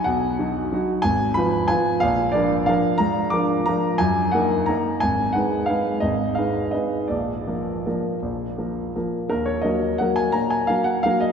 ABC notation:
X:1
M:3/4
L:1/8
Q:1/4=176
K:B
V:1 name="Grand piano"
f4- f z | [K:Ebm] a2 c'2 a2 | f2 =d2 f2 | b2 =d'2 b2 |
a2 g2 b2 | a2 g2 f2 | e2 f2 e2 | =d6- |
=d4- d z | B d e2 g a | b a f g f e |]
V:2 name="Grand piano"
B,,,2 [F,DF]2 [F,DF]2 | [K:Ebm] A,,,2 [F,Fc]2 [F,Fc]2 | B,,,2 [F,=DB]2 [F,DB]2 | A,,2 [F,=DB]2 [F,DB]2 |
G,,2 [B,EB]2 [B,EB]2 | A,,,2 [A,Ec]2 [A,Ec]2 | A,,,2 [A,Ec]2 [A,Ec]2 | B,,,2 [F,B,B]2 [F,B,B]2 |
B,,,2 [F,B,B]2 [F,B,B]2 | E,,2 [G,B,B]2 [G,B,B]2 | B,,2 [G,B,B]2 [G,B,B]2 |]